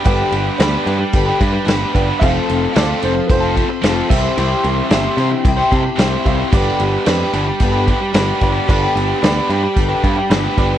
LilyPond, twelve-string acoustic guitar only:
\new Staff \with { instrumentName = "Twelve-string acoustic guitar" } { \time 4/4 \key g \mixolydian \tempo 4 = 111 <g, d g b d' b'>8 <g b d' b'>8 <g b d' b'>8 <g b d' b'>8 <g, d g b d' b'>8 <g b d' b'>8 <g b d' b'>8 <g b d' b'>8 | <f c' f' a'>8 <c' f' a'>8 <f c' f' a'>8 <c' f' a'>8 <f c' f' a'>8 <c' f' a'>8 <f c' f' a'>8 <c' e' g'>8 | <c g c' e' g'>8 <c' e' g'>8 <g c' e' g'>8 <c' e' g'>8 <c g c' e' g'>8 <c' e' g'>8 <g c' e' g'>8 <c' e' g'>8 | <g, d g b d' g'>8 <g b d' g'>8 <g b d' g'>8 <g b d' g'>8 <g, d g b d' g'>8 <g b d' g'>8 <g b d' g'>8 <g b d' g'>8 |
<g, d g b d' g'>8 <g b d' g'>8 <g b d' g'>8 <g b d' g'>8 <g, d g b d' g'>8 <g b d' g'>8 <g b d' g'>8 <g b d' g'>8 | }